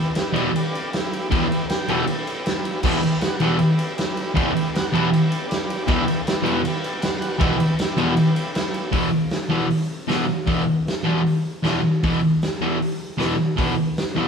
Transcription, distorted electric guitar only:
0.33 E2 B2 E3
1.31 E2 B2 E3
1.89 E2 B2 E3
2.84 E2 B2 E3
3.40 E2 B2 E3
4.34 E2 B2 E3
4.93 E2 B2 E3
5.87 E2 B2 E3
6.43 E2 B2 E3
7.39 E2 B2 E3
7.97 E2 B2 E3
8.92 E2 B2 E3
9.49 E2 B2 E3
10.07 E2 B2 E3
10.46 E2 B2 E3
11.04 E2 B2 E3
11.63 E2 B2 E3
12.03 E2 B2 E3
12.61 E2 B2 E3
13.18 E2 B2 E3
13.57 E2 B2 E3
14.15 E2 B2 E3

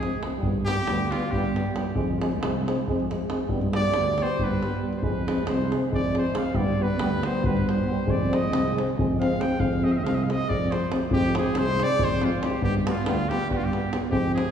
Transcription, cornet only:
Already playing: G#4
0.65 G4
1.11 F4
1.31 G4
3.75 D5
4.23 C5
4.44 B4
4.97 C5
5.04 B4
5.49 C5
5.95 D5
6.18 C5
6.37 F5
6.56 D5
6.83 B4
7.26 C5
7.47 B4
7.69 C5
8.11 D5
8.35 D#5
9.20 F5
9.41 G5
9.60 F5
9.84 D#5
9.92 F5
9.97 D#5
10.05 F5
10.15 D#5
10.23 F5
10.31 D#5
10.49 D5
10.71 C5
11.13 G4
11.38 G#4
11.58 C5
11.83 D5
12.04 C5
12.25 F4
12.43 G4
12.64 G4
12.90 F4
13.07 F4
13.29 G4
13.51 G4
13.57 F4
13.65 G4
14.10 G4
14.34 G#4

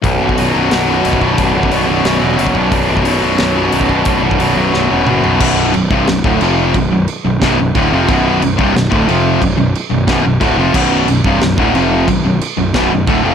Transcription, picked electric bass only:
0.04 B0
0.21 B0
0.39 B0
0.56 B0
0.73 B0
1.06 B0
1.22 B0
1.39 B0
1.55 B0
1.72 B0
1.88 B0
2.04 B0
2.22 E1
2.39 F#1
2.55 B1
2.72 B0
2.89 B0
3.06 B0
3.23 B0
3.40 B0
3.74 B0
3.90 B0
4.07 B0
4.23 B0
4.41 B0
4.57 B0
4.75 B0
4.91 E1
5.09 F#1
5.25 B1
5.41 B0
5.74 B0
5.91 C1
6.08 B0
6.24 D1
6.40 F1
6.74 B0
6.91 B0
7.25 B0
7.42 B0
7.59 B0
7.75 D1
7.92 F1
8.09 B0
8.43 B0
8.59 C1
8.76 B0
8.92 D1
9.09 F1
9.42 B0
9.59 B0
9.93 B0
10.07 B0
10.25 B0
10.41 D1
10.58 F1
10.74 B0
11.08 B0
11.24 C1
11.41 B0
11.58 D1
11.77 F1
12.08 B0
12.25 B0
12.58 B0
12.74 B0
12.93 B0
13.07 D1
13.24 F1

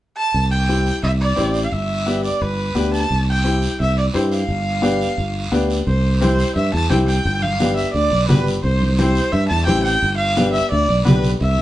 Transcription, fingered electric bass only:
0.34 C2
1.03 C2
1.38 A1
1.72 G1
2.42 G1
2.75 D2
3.11 C2
3.80 C2
4.15 G2
4.49 G1
5.18 G1
5.52 D2
5.87 C2
6.56 G2
6.74 E2
6.90 C2
7.25 G1
7.95 D2
8.11 B1
8.29 G1
8.64 C2
9.33 G2
9.51 E2
9.68 A1
10.02 G1
10.72 D2
10.89 B1
11.06 B1
11.41 C2

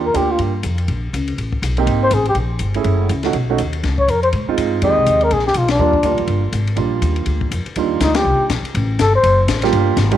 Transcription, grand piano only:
0.14 A#3 D4 F4 G4
1.78 A#3 C4 D#4 G4
2.75 A3 C#4 E4 G#4
3.24 A3 C#4 D#4 F#4
3.50 A3 C#4 D#4 F#4
4.49 G#3 C4 D#4 F4
4.83 G#3 C4 D#4 G4
5.79 G3 A#3 D4 F4
6.04 G3 A#3 D4 F4
6.76 G3 A#3 D4 F4
7.77 G3 A#3 D4 D#4 F4
9.63 G3 A#3 D4 F4 G4
10.12 G3 A#3 D4 F4 G4

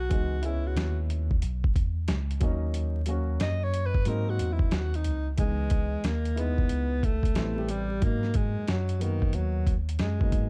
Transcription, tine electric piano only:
0.11 C#2
0.77 D#2
1.43 B1
1.76 E2
2.09 C#2
2.41 D#2
3.41 F#2
4.07 G#2
4.40 E2
4.73 D#2
5.06 C#2
5.38 C#2
5.93 D#2
6.04 D#2
6.70 C#2
7.36 A1
8.02 G#2
8.56 F#2
8.68 F#2
9.34 D#2
10.00 F#2
10.32 G#2

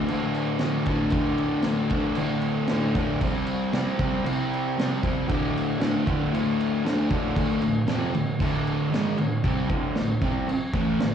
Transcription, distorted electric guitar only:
Already playing: D3
0.10 D2 A2 D3
0.61 D2 A2 D3
0.87 D2 A2 D3
1.12 D2 A2 D3
1.64 D2 A2 D3
1.90 D2 A2 D3
2.17 D2 A2 D3
2.69 D2 A2 D3
2.95 D2 A2 D3
3.21 C3 G3 C4
3.73 C3 G3 C4
3.99 C3 G3 C4
4.24 C3 G3 C4
4.76 C3 G3 C4
5.02 C3 G3 C4
5.27 D2 A2 D3
5.78 D2 A2 D3
6.06 D2 A2 D3
6.32 D2 A2 D3
6.84 D2 A2 D3
7.10 D2 A2 D3
7.35 D2 A2 D3
7.62 D2 A2
7.87 F2 C3 F3
8.14 D2 A2
8.39 D2 A2 D3
8.90 G#2 D#3 G#3
9.17 D2 A2
9.43 C3 G3 C4
9.69 D2 A2 D3
9.97 D2 A2
10.21 C3 G3 C4
10.48 muted distorted electric guitar stroke
10.74 A2 E3 A3
10.99 D2 A2

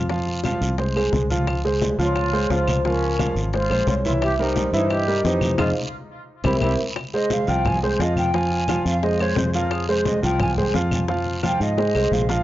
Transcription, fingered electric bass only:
Already playing: F2
0.61 C2
1.13 C#2
1.99 C#2
2.50 C#2
3.35 G#1
3.70 A#1
3.87 C2
4.73 G2
5.25 F2
5.59 F2
6.44 C2
6.62 C2
7.48 C2
7.99 F2
8.85 F2
9.37 F2
10.23 C2
10.74 F2
11.60 G#2
11.95 C2
12.12 A#1

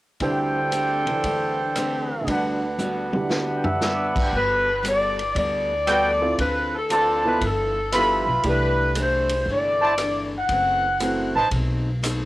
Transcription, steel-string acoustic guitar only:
0.20 D3 A3 C4 G4
0.71 D3 A3 C4 G4
1.24 D3 A3 C4 G4
1.76 D3 A3 C4 G4
2.27 D3 G3 B3 F#4
2.79 D3 G3 B3 F#4
3.29 D3 G3 B3 F#4
3.82 D3 G3 B3 F#4
4.32 G3 B3 F#4 A4
4.83 G3 B3 F#4 A4
5.35 G3 B3 F#4 A4
5.88 G3 B3 F#4 A4
6.39 D3 C4 F4 A4
6.89 D3 C4 F4 A4
7.42 G2 F3 B3 E4
7.94 G2 F3 B3 E4
8.44 C3 E3 A3 D4
8.95 C3 E3 A3 D4
9.48 C3 E3 A3 D4
9.99 C3 E3 A3 D4
10.49 F#2 E3 A3 C4
11.00 F#2 E3 A3 C4
11.52 B2 A3 C4 D#4
12.02 B2 A3 C4 D#4

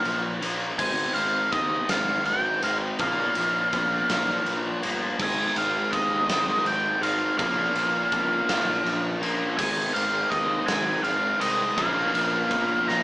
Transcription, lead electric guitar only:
Already playing: F5
0.78 G#5
1.14 F5
1.52 D#5
1.90 F5
2.26 G5
2.64 F5
3.01 F5
5.23 G#5
5.58 F5
5.92 D#5
6.67 G5
7.03 F5
7.38 F5
9.57 G#5
9.94 F5
10.30 D#5
10.66 G#5
11.04 F5
11.41 D#5
11.77 F5
12.88 A#5

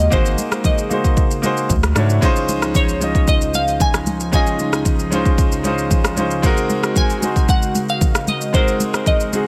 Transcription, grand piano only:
Already playing: A#3 D#4 F#4 G#4 A#4 C5
0.10 A#3 D#4 F#4 G#4 C5
0.89 A#3 D#4 F#4 G#4 C5
1.42 A#3 D#4 F#4 G#4 C5
1.95 A3 D4 E4 F#4 C#5
2.21 G#3 C#4 D#4 F4 C5
3.00 G#3 C#4 D#4 F4 D#5
4.32 G#3 C#4 D#4 F4 D#5
5.11 G#3 C#4 D#4 F4 C5
5.63 G#3 C#4 D#4 F4 C5
6.16 G#3 C#4 D#4 F4 C5
6.42 G#3 C4 D#4 F#4 A#4
7.21 G#3 C4 D#4 F#4 C5
8.53 G#3 C4 D#4 F#4 A#4
9.32 G#3 C4 D#4 F#4 G#4

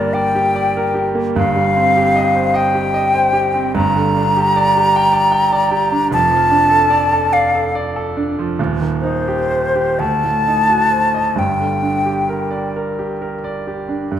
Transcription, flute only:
Already playing: D5
0.14 G5
1.37 F5
2.56 G5
3.76 A#5
6.13 A5
7.33 F5
9.01 C5
9.99 A5
11.39 G5

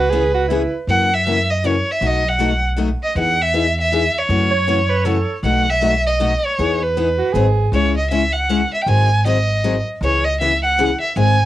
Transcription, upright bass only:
Already playing: C#2
0.87 F#2
2.01 B1
3.15 E2
4.29 F#2
5.43 B1
6.59 E2
7.34 G#1
7.72 C#2
8.86 G#1
10.01 C#2
11.16 G#1

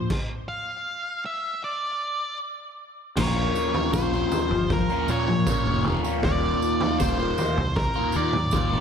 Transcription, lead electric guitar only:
0.48 F5
1.26 E5
1.64 D5
3.17 C#5
3.93 C5
4.73 A#4
5.10 C#5
6.25 D5
7.00 C5
7.76 A#4
8.16 D5

